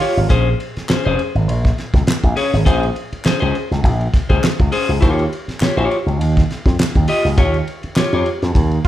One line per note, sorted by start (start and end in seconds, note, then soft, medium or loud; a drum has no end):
0.00 0.18 F4 medium
0.00 0.28 F4 loud
0.00 0.19 G4 medium
0.00 0.19 C#5 medium
0.00 open hi-hat medium
0.00 ride medium
0.17 0.27 G#1 medium
0.17 ride soft
0.29 0.53 A#1 loud
0.29 0.48 C#4 medium
0.29 0.48 G#4 medium
0.29 0.48 C5 loud
0.29 kick loud
0.29 hi-hat pedal medium
0.29 ride medium
0.60 ride medium
0.77 muted slap bass stroke soft
0.77 snare soft
0.77 ride soft
0.89 1.04 C#4 medium
0.89 1.04 G#4 medium
0.89 1.04 C5 medium
0.89 muted slap bass stroke soft
0.89 snare loud
0.89 clap medium
0.89 ride medium
1.05 1.16 F1 medium
1.05 1.21 C#4 medium
1.05 1.21 G#4 medium
1.05 1.21 C5 loud
1.05 ride soft
1.19 ride medium
1.35 1.48 G#1 medium
1.35 ride soft
1.48 1.71 A#1 loud
1.48 ride medium
1.64 kick medium
1.64 snare soft
1.64 ride soft
1.78 snare soft
1.78 ride medium
1.94 2.04 C#2 medium
1.94 kick loud
1.94 snare soft
1.94 ride soft
2.07 muted slap bass stroke soft
2.07 snare loud
2.07 clap loud
2.07 ride medium
2.23 2.34 A#1 loud
2.23 kick medium
2.23 ride soft
2.36 2.55 C#4 medium
2.36 2.55 G#4 loud
2.36 2.55 C#5 loud
2.36 open hi-hat medium
2.36 ride medium
2.53 2.63 G#1 medium
2.53 snare soft
2.53 ride soft
2.65 2.89 A#1 loud
2.65 2.84 C#4 medium
2.65 2.84 G#4 medium
2.65 2.85 C5 loud
2.65 kick loud
2.65 hi-hat pedal medium
2.65 ride medium
2.83 ride soft
2.96 ride medium
3.12 muted slap bass stroke soft
3.12 ride soft
3.25 3.39 C#4 medium
3.25 3.40 G#4 medium
3.25 3.39 C5 medium
3.25 muted slap bass stroke soft
3.25 snare loud
3.25 clap medium
3.25 ride medium
3.40 3.52 C#2 medium
3.40 3.57 C#4 medium
3.40 3.56 G#4 medium
3.40 3.56 C5 loud
3.40 ride soft
3.55 ride soft
3.71 3.81 C#2 medium
3.71 snare soft
3.71 ride soft
3.84 4.07 A#1 loud
3.84 kick loud
3.84 ride medium
4.01 ride soft
4.14 kick loud
4.14 snare soft
4.14 ride medium
4.29 4.40 C#2 medium
4.29 4.45 C#4 medium
4.29 4.45 G#4 medium
4.29 4.45 C5 medium
4.29 kick medium
4.29 ride soft
4.43 muted slap bass stroke soft
4.43 snare loud
4.43 clap loud
4.43 ride medium
4.60 4.70 C#2 medium
4.60 kick medium
4.60 ride soft
4.72 4.90 C#4 medium
4.72 4.91 G#4 loud
4.72 4.91 C5 loud
4.72 open hi-hat medium
4.72 ride medium
4.89 4.99 C#2 medium
4.89 ride soft
5.01 5.25 D#2 loud
5.01 5.23 F4 medium
5.01 5.23 G4 medium
5.01 5.23 C#5 medium
5.01 kick loud
5.01 hi-hat pedal medium
5.01 ride medium
5.19 ride soft
5.33 ride medium
5.48 muted slap bass stroke soft
5.48 snare soft
5.48 ride soft
5.60 5.76 F4 medium
5.60 5.76 G4 medium
5.60 5.76 C#5 medium
5.60 muted slap bass stroke soft
5.60 snare loud
5.60 clap loud
5.60 ride medium
5.77 5.87 A#1 medium
5.77 5.97 F4 medium
5.77 5.96 G4 medium
5.77 5.96 C#5 medium
5.77 ride soft
5.91 ride soft
6.06 6.19 C#2 medium
6.06 ride soft
6.19 6.42 D#2 loud
6.19 ride medium
6.37 kick loud
6.37 snare soft
6.37 ride soft
6.51 snare soft
6.51 ride medium
6.66 6.76 F2 medium
6.66 kick loud
6.66 snare soft
6.66 ride soft
6.78 muted slap bass stroke soft
6.78 snare loud
6.78 clap loud
6.78 ride medium
6.95 7.05 D#2 medium
6.95 kick medium
6.95 ride soft
7.08 7.26 F4 medium
7.08 7.27 G4 loud
7.08 7.27 D#5 loud
7.08 open hi-hat medium
7.08 ride medium
7.25 7.38 C#2 medium
7.25 snare soft
7.25 ride soft
7.38 7.61 D#2 loud
7.38 7.56 F4 medium
7.38 7.56 G4 medium
7.38 7.56 C#5 loud
7.38 kick loud
7.38 hi-hat pedal medium
7.38 ride medium
7.54 ride soft
7.68 ride medium
7.83 muted slap bass stroke soft
7.83 ride soft
7.96 8.11 F4 medium
7.96 8.11 G4 medium
7.96 8.12 C#5 medium
7.96 muted slap bass stroke soft
7.96 snare loud
7.96 clap loud
7.96 ride medium
8.13 8.23 F2 medium
8.13 8.29 F4 medium
8.13 8.29 G4 medium
8.13 8.29 C#5 medium
8.13 ride soft
8.26 ride soft
8.42 8.53 F2 loud
8.42 snare soft
8.42 ride soft
8.55 8.78 D#2 medium
8.55 kick loud
8.55 ride medium
8.71 ride soft